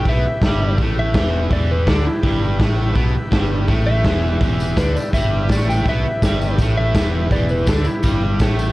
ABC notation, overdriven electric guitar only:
X:1
M:4/4
L:1/8
Q:1/4=165
K:Em
V:1 name="Overdriven electric guitar" clef=bass
[B,,B,] z [G,,G,]2 [A,,A,]2 [E,,E,]2 | [E,,E,]2 [D,D] z [G,,G,]2 [A,,A,]2 | [B,,B,] z [G,,G,]2 [A,,A,]2 [E,,E,]2 | [E,,E,]2 [D,D] z [G,,G,]2 [A,,A,]2 |
[B,,B,] z [G,,G,]2 [A,,A,]2 [E,,E,]2 | [E,,E,]2 [D,D] z [G,,G,]2 [A,,A,]2 |]